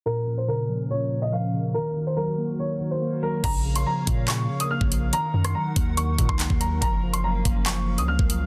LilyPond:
<<
  \new Staff \with { instrumentName = "Grand piano" } { \time 4/4 \key bes \minor \tempo 4 = 142 bes'8. c''16 bes'4 des''8. ees''16 f''4 | bes'8. c''16 bes'4 des''8. c''8. bes'8 | bes''8. c'''16 bes''4 des'''8. ees'''16 f'''4 | bes''8. c'''16 bes''4 des'''8. c'''8. bes''8 |
bes''8. c'''16 bes''4 des'''8. ees'''16 f'''4 | }
  \new Staff \with { instrumentName = "Analog synth pad" } { \time 4/4 \key bes \minor << { bes'1~ | bes'1 | f''1 | ges''1 |
f''1 | } \\ { <bes, f des'>1 | <ees, ees ges'>1 | <bes bes' des''>1 | <ees ees'>1 |
<bes des'>1 | } >> }
  \new Staff \with { instrumentName = "Tine electric piano" } { \clef bass \time 4/4 \key bes \minor bes,8 bes,8 des8 f8 bes,8 bes,8 f8 des8 | ees8 ees8 ges8 bes8 ees8 ees8 bes8 ges8 | r8 des8 f4 des8 des8 bes8 f8 | ees8 ees8 ges8 bes8 ees8 ees8 bes8 ges8 |
f8 f8 ges8 bes8 f8 f8 bes8 ges8 | }
  \new Staff \with { instrumentName = "808-style bass" } { \clef bass \time 4/4 \key bes \minor r1 | r1 | bes,,4 r8 bes,4 r8. bes,,8. | r8 ges,8 r8 ees,4 bes,16 des,8 ees,8. |
ges,,4. ges,,4~ ges,,16 des,8 des,8. | }
  \new DrumStaff \with { instrumentName = "Drums" } \drummode { \time 4/4 r4 r4 r4 r4 | r4 r4 r4 r4 | <cymc hh bd>8. hh16 r8 <hh bd>8 <hc hh>8. hh16 r16 bd16 hh8 | hh8. <hh ss>16 r8 <hh bd>8 hh8 <hh bd>16 bd16 <hc hh>16 bd16 hh8 |
<hh bd>8. hh16 r8 <hh bd>8 <hc hh>8. hh16 r16 bd16 hh8 | }
>>